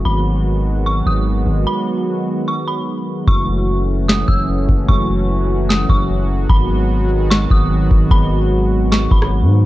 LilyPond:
<<
  \new Staff \with { instrumentName = "Synth bell" } { \time 4/4 \key fis \dorian \tempo 4 = 149 b''4 r4 cis'''8 dis'''8 r4 | b''4 r4 cis'''8 b''8 r4 | cis'''4 r4 dis'''8 e'''8 r4 | cis'''4 r4 dis'''8 cis'''8 r4 |
b''4 r4 cis'''8 dis'''8 r4 | b''4 r4 cis'''8 b''8 r4 | }
  \new Staff \with { instrumentName = "Analog synth pad" } { \clef bass \time 4/4 \key fis \dorian << { <fis fis'>1~ | <fis fis'>1 | <fis fis'>1~ | <fis fis'>1~ |
<fis fis'>1~ | <fis fis'>1 | } \\ { <dis gis b>1~ | <dis gis b>1 | <e a cis'>1~ | <e a cis'>1 |
<dis gis b>1~ | <dis gis b>1 | } >> }
  \new Staff \with { instrumentName = "808-style bass" } { \clef bass \time 4/4 \key fis \dorian gis,,2~ gis,,8 gis,,4 gis,,8 | r1 | fis,,2~ fis,,8 fis,,4 fis,,8 | fis,,2~ fis,,8 fis,,4. |
gis,,2~ gis,,8 gis,,4 gis,,8 | gis,,2~ gis,,8 gis,,8. gis,8. | }
  \new DrumStaff \with { instrumentName = "Drums" } \drummode { \time 4/4 r4 r4 r4 r4 | r4 r4 r4 r4 | bd4 r4 sn8 bd8 r8 bd8 | bd4 r4 sn8 bd8 r4 |
bd4 r4 sn8 bd8 r8 bd8 | bd4 r4 sn8 bd16 ss16 r4 | }
>>